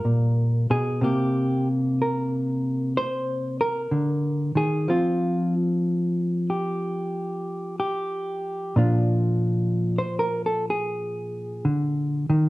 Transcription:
hollow-body jazz guitar
Already playing: G3 F4 A#4
0.05 A#2
0.70 B2 G#4
1.01 C3 A#3 G4
2.02 A#4
2.97 C5
3.61 A#4
3.91 D3
4.55 D#3 G#4
4.88 F3 C4 F4
6.50 G4
7.80 G4
8.76 A#2 F3 D4 F4
9.98 C5
10.19 A#4
10.46 A4
10.70 G#4
11.65 D3
12.30 D#3

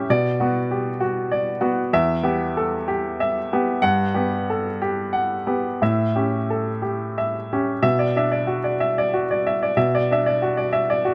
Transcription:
upright piano
0.10 B2 D5
0.40 B3 F#4
0.71 G4
1.00 F#4
1.32 D5
1.61 B3 F#4
1.93 E2 E5
2.23 B3 G4
2.57 A4
2.88 G4
3.20 E5
3.53 B3 G4
3.82 G2 F#5
4.14 B3 G4
4.50 A4
4.82 G4
5.13 F#5
5.47 B3 G4
5.82 A2 E5
6.16 C#4 G4
6.50 A4
6.82 G4
7.18 E5
7.53 C#4 G4
7.82 B2 E5
7.99 D5
8.16 D4 E5
8.32 D5
8.47 F#4
8.64 D5
8.80 E5
8.98 D5
9.14 F#4
9.31 D5
9.47 E5
9.63 D5
9.77 B2 E5
9.95 D5
10.11 D4 E5
10.26 D5
10.42 F#4
10.57 D5
10.73 E5
10.90 D5
11.05 F#4

